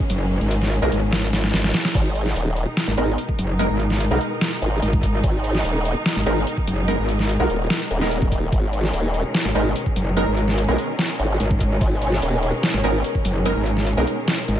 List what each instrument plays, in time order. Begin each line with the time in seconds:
Already playing: string section B2 D#3 G#3 A#3 C#4
0.10 wobble bass F#1, open hi-hat
0.41 wobble bass G#1, closed hi-hat
0.51 closed hi-hat
0.62 snare
0.82 wobble bass B1, synth stab G#3 B3 D#4 A#4
0.92 wobble bass G#1, closed hi-hat
1.13 snare
1.33 snare, closed hi-hat
1.44 snare
1.54 wobble bass G#1, snare
1.64 snare
1.74 snare, open hi-hat
1.85 snare
1.95 wobble bass G#1, string section B2 D#3 G#3 D#4 A#4, kick, closed hi-hat, crash
2.15 closed hi-hat
2.26 snare
2.36 wobble bass D#1, closed hi-hat
2.57 closed hi-hat
2.77 snare, closed hi-hat
2.88 wobble bass G#1
2.98 wobble bass G#1, synth stab G#3 B3 D#4 A#4, closed hi-hat
3.18 closed hi-hat
3.29 kick
3.39 wobble bass F#1, open hi-hat
3.59 synth stab G#3 B3 D#4 A#4, closed hi-hat
3.70 wobble bass G#1
3.80 closed hi-hat
3.90 snare
4.00 closed hi-hat
4.11 wobble bass B1, synth stab G#3 B3 D#4 A#4
4.21 closed hi-hat
4.41 snare, closed hi-hat
4.62 wobble bass G#1, closed hi-hat
4.82 wobble bass G#1, closed hi-hat
4.93 kick
5.03 kick, open hi-hat
5.24 wobble bass G#1, kick, closed hi-hat
5.44 closed hi-hat
5.55 snare
5.65 wobble bass D#1, closed hi-hat
5.85 closed hi-hat
6.06 snare, closed hi-hat
6.16 wobble bass G#1
6.26 wobble bass G#1, synth stab G#3 B3 D#4 A#4, closed hi-hat
6.47 closed hi-hat
6.58 kick
6.67 wobble bass F#1, open hi-hat
6.88 synth stab G#3 B3 D#4 A#4, closed hi-hat
6.99 wobble bass G#1
7.09 closed hi-hat
7.19 snare
7.29 closed hi-hat
7.40 wobble bass B1, synth stab G#3 B3 D#4 A#4
7.50 wobble bass D#1, closed hi-hat
7.70 snare, closed hi-hat
7.91 wobble bass D#1, closed hi-hat
8.01 synth stab G#3 B3 D#4 A#4, snare
8.11 closed hi-hat
8.22 kick
8.32 kick, open hi-hat
8.52 wobble bass G#1, string section C#4, kick, closed hi-hat
8.73 closed hi-hat
8.84 snare
8.93 wobble bass D#1, closed hi-hat
9.14 closed hi-hat
9.35 snare, closed hi-hat
9.45 wobble bass G#1
9.55 wobble bass G#1, synth stab G#3 B3 D#4 A#4, closed hi-hat
9.76 closed hi-hat
9.86 kick
9.96 wobble bass F#1, open hi-hat
10.17 synth stab G#3 B3 D#4 A#4, closed hi-hat
10.27 wobble bass G#1
10.37 closed hi-hat
10.48 snare
10.58 closed hi-hat
10.68 wobble bass B1, synth stab G#3 B3 D#4 A#4
10.78 closed hi-hat
10.99 snare, closed hi-hat
11.19 wobble bass G#1, closed hi-hat
11.40 wobble bass G#1, closed hi-hat
11.51 kick
11.61 kick, open hi-hat
11.81 wobble bass G#1, kick, closed hi-hat
12.02 closed hi-hat
12.12 snare
12.22 wobble bass D#1, closed hi-hat
12.43 closed hi-hat
12.63 snare, closed hi-hat
12.74 wobble bass G#1
12.84 wobble bass G#1, synth stab G#3 B3 D#4 A#4, closed hi-hat
13.04 closed hi-hat
13.15 kick
13.25 wobble bass F#1, open hi-hat
13.45 synth stab G#3 B3 D#4 A#4, closed hi-hat
13.56 wobble bass G#1
13.66 closed hi-hat
13.77 snare
13.87 closed hi-hat
13.97 wobble bass B1, synth stab G#3 B3 D#4 A#4
14.07 open hi-hat
14.28 snare, closed hi-hat
14.48 wobble bass G#1, closed hi-hat